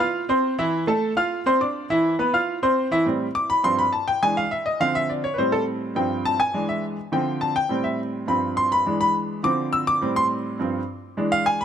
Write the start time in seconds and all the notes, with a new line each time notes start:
0.00 F4 F5 F6
0.29 C4 C5 C6
0.58 E3 E4 E5
0.87 A3 A4 A5
1.17 F4 F5 F6
1.46 C4 C5 C6
1.61 D4 D5 D6
1.90 E3 E4 E5
2.19 B3 B4 B5
2.34 F4 F5 F6
2.63 C4 C5 C6
2.91 E3 E4 E5
3.05 A2 G3 C4
3.35 D6
3.50 B5
3.64 G2 F3 C4 C6
3.79 B5
3.93 A5
4.08 G5
4.22 E3 G#3 D4 G#5
4.37 F5
4.51 E5
4.66 D#5
4.80 D3 F3 C4 F5
4.95 E5
5.10 D5
5.24 C#5
5.34 B4
5.38 A2 G3 C4 C5
5.52 A4
5.95 G2 F3 C4 G5
6.25 A5
6.40 G#5
6.53 E3 G#3 D4
6.69 E5
7.12 D3 F3 C4 G5
7.41 A5
7.56 G5
7.69 A2 G3 C4
7.84 E5
8.27 G2 F3 C4 B5
8.57 C6
8.72 B5
8.86 E3 G#3 D4
9.01 B5
9.43 D3 F3 C4 D6
9.73 E6
9.87 D6
10.01 A2 G3 C4
10.16 C6
10.59 G2 F3 C4
11.17 E3 G#3 D4
11.32 F5
11.46 G#5
11.61 B5